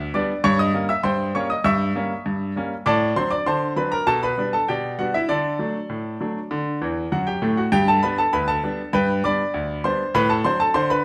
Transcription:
Already playing: E5
0.14 G3 B3 D4 D5 D6
0.44 G2 C#5 C#6
0.59 D#5 D#6
0.73 G3 A#3 C#4
0.89 E5 E6
1.03 G2 C5 G5 C6
1.35 G3 A#3 C#4 C#5 C#6
1.50 D#5 D#6
1.64 G2 E5 C#6 E6
1.96 G3 A#3 C#4
2.26 G2
2.56 G3 A#3 C#4
2.86 A2 D5 A5 D6
3.16 F#3 C4 D4 C5 C6
3.31 D5 D6
3.46 D3 C5 A5 C6
3.76 F#3 C4 D4 B4 B5
3.92 A#4 A#5
4.07 B2 A4 A5
4.23 B4 B5
4.38 G3 B3 D4
4.53 A4 A5
4.68 B2 G4 D5 G5
4.99 G3 B3 D4 F#4 F#5
5.14 E4 E5
5.29 D3 D4 A4 D5
5.59 F#3 A3 D4
5.89 A2
6.21 F#3 A3 D4
6.51 D3
6.82 E2 E3
7.12 F#2 F#3 F#4 F#5
7.27 G4 G5
7.42 A2 A3
7.57 F#4 F#5
7.72 G2 G4 G5
7.88 A4 A5
8.03 G3 B3 D4 B4 B5
8.18 A4 A5
8.33 D2 B4 B5
8.48 A4 A5
8.63 G3 B3 D4
8.93 G2 B4 G5 B5
9.24 G3 B3 D4 D5 B5 D6
9.54 D2
9.84 G3 B3 D4 C5 C6
10.15 A2 B4 B5
10.30 A4 A5
10.44 F#3 C4 D4 C5 C6
10.60 A4 A5
10.74 D3 C5 C6
10.90 B4 B5

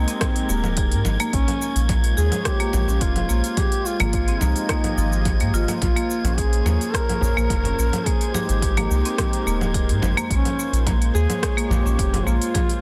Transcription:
Already playing: G#3 C4 D#4 G4 A#4 C5 G#6
0.08 C4, open hi-hat, shaker
0.21 kick, cross-stick, open hi-hat, low conga, shaker
0.36 open hi-hat
0.49 D#1 A#3, shaker
0.64 low conga, shaker
0.77 G#4, kick, open hi-hat, shaker
0.92 G#2, open hi-hat
1.05 G#1, low conga, shaker
1.20 A#3, open hi-hat, shaker
1.33 A#1 A#3 C#4, kick, open hi-hat, shaker
1.48 C#4, open hi-hat, low conga
1.56 G#3 F4
1.62 shaker
1.76 A#1, open hi-hat, shaker
1.89 A#3, kick, open hi-hat, low conga, shaker
1.94 C5
1.99 C#5
2.04 open hi-hat
2.17 D#2 G#4, shaker
2.32 open hi-hat, low conga, shaker
2.45 G4, kick, cross-stick, open hi-hat, shaker
2.60 A#3, open hi-hat
2.73 A#1, low conga, shaker
2.88 A#1 C#4, shaker
3.01 F1 F4, kick, open hi-hat, shaker
3.16 open hi-hat, low conga
3.29 A#1 A#3, shaker
3.44 open hi-hat, shaker
3.57 G#3 G4 G#4, kick, open hi-hat, low conga, shaker
3.72 open hi-hat
3.86 F4 G4, shaker
4.00 G#1 A#3, open hi-hat, low conga, shaker
4.13 kick, open hi-hat, shaker
4.19 D#5
4.28 C4, open hi-hat
4.41 C2 D#4, low conga, shaker
4.56 open hi-hat, shaker
4.69 A#3, kick, cross-stick, open hi-hat, shaker
4.84 open hi-hat, low conga
4.97 G#1 F3, shaker
5.13 shaker
5.25 kick, open hi-hat, low conga, shaker
5.40 G#2 A#3, open hi-hat
5.53 G#1 F4, shaker
5.68 A#3, open hi-hat, low conga, shaker
5.81 A#1 A#3 F4, kick, open hi-hat, low conga, shaker
5.97 A#3, open hi-hat
6.09 G#4, shaker
6.24 A#1 C#4 C#5, open hi-hat, low conga, shaker
6.38 G#4, kick, open hi-hat, shaker
6.53 open hi-hat
6.65 D#2 A#3, low conga, shaker
6.81 open hi-hat, shaker
6.94 G#4 A#4, kick, cross-stick, open hi-hat, shaker
7.09 open hi-hat, low conga
7.21 A#1, frame drum, shaker
7.37 A#1 A#3, shaker
7.50 F1, kick, open hi-hat, low conga, shaker
7.64 C#4, open hi-hat, frame drum
7.78 A#1, shaker
7.93 open hi-hat, low conga, shaker
8.06 G#3 A#3 G#4, kick, open hi-hat, shaker
8.11 D#4 G4
8.21 A#4, open hi-hat
8.34 G4 G#4, low conga, shaker
8.49 G#1, open hi-hat, shaker
8.62 kick, open hi-hat, shaker
8.77 A#3, open hi-hat, low conga
8.90 C2, shaker
9.05 C4, open hi-hat, shaker
9.18 kick, cross-stick, open hi-hat, low conga, shaker
9.33 open hi-hat
9.47 D#1 A#3, shaker
9.61 low conga, shaker
9.74 G#4, kick, open hi-hat, shaker
9.89 G#2, open hi-hat
10.02 G#1, frame drum, low conga, shaker
10.17 A#3, open hi-hat, shaker
10.30 A#1 A#3 C#4, kick, open hi-hat, shaker
10.42 C#4 F4, open hi-hat, low conga
10.60 shaker
10.64 G#3
10.73 A#1, open hi-hat, shaker
10.87 A#3, kick, open hi-hat, low conga, shaker
11.02 open hi-hat
11.06 C#5
11.14 D#2 G#4, shaker
11.30 open hi-hat, low conga, shaker
11.43 kick, cross-stick, open hi-hat, shaker
11.57 A#3, open hi-hat
11.70 A#1 G4, frame drum, low conga, shaker
11.85 A#1 C#4, shaker
11.99 F1, kick, open hi-hat, shaker
12.13 open hi-hat, frame drum, low conga
12.26 A#1 A#3 F4, shaker
12.42 open hi-hat, shaker
12.54 G#3 G#4, kick, open hi-hat, low conga, shaker
12.69 G4, open hi-hat

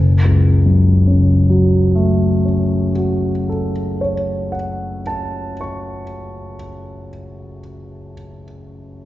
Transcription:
Already playing: F#1
0.25 C#2
0.66 F#2
1.07 C#3
1.50 F#3
1.95 A3
2.45 C#4
2.95 F#4
3.49 A4
4.01 C#5
4.52 F#5
5.07 A5
5.61 C#6

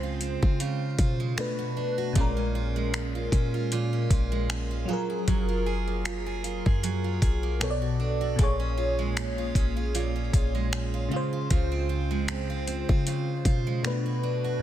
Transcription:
Already playing: C#2 C#3 G#3 C4 F4 C5
0.03 F4
0.21 C4, closed hi-hat
0.42 C#3 F4, kick
0.60 C#3 F4, closed hi-hat
0.99 B2 F4, kick, closed hi-hat
1.20 G#3
1.37 B2 A3 D4 B4, finger snap, closed hi-hat
1.59 F#4
1.77 D4
1.98 F#4
2.13 A#1 A#2 G#3 F4, kick, closed hi-hat
2.18 C#4 A#4
2.37 C#4
2.55 F4
2.76 G#3
2.94 C#4, finger snap, closed hi-hat
3.15 F4
3.32 A#2 C#4, kick, closed hi-hat
3.54 F4
3.72 A#2 F4, closed hi-hat
3.93 C#4
4.11 A#1 F4, kick, closed hi-hat
4.32 G#3
4.50 C#4, finger snap, closed hi-hat
4.71 F4
4.85 F#3 F4
4.90 G#4 A#4
5.10 G#4
5.28 F#1 F#3 G#4, kick, closed hi-hat
5.49 F4
5.66 G#4
5.88 A#3
6.05 F4, finger snap, closed hi-hat
6.26 G#4
6.44 F4, closed hi-hat
6.66 F#2 G#4, kick
6.83 F#3 G#4, closed hi-hat
7.04 F4
7.22 B1 G#4, kick, closed hi-hat
7.43 A#3
7.60 B2 B3 A4 C#5, finger snap, closed hi-hat
7.70 D5
7.82 F#4
8.00 D4
8.21 F#4
8.36 A#1 A#2 A#3 F4, kick, closed hi-hat
8.41 G#4 C#5
8.60 C#4
8.78 F4
8.99 G#3
9.17 C#4, finger snap, closed hi-hat
9.38 F4
9.55 A#1 C#4, kick, closed hi-hat
9.77 F4
9.95 A#2 F4, closed hi-hat
10.16 C#4
10.33 A#1 F4, kick, closed hi-hat
10.55 G#3
10.73 C#4, finger snap, closed hi-hat
10.94 F4
11.09 C#3 G#3
11.14 F4 C5
11.33 F4
11.50 C#2 C#3 F4, kick, closed hi-hat
11.72 C4
11.89 F4
12.11 G#3
12.28 C4, finger snap, closed hi-hat
12.50 F4
12.67 C4, closed hi-hat
12.89 C#3 F4, kick
13.07 C#3 F4, closed hi-hat
13.45 B2 F4, kick, closed hi-hat
13.67 G#3
13.83 B2 A3 D4 B4, finger snap, closed hi-hat
14.06 F#4
14.23 D4
14.44 F#4

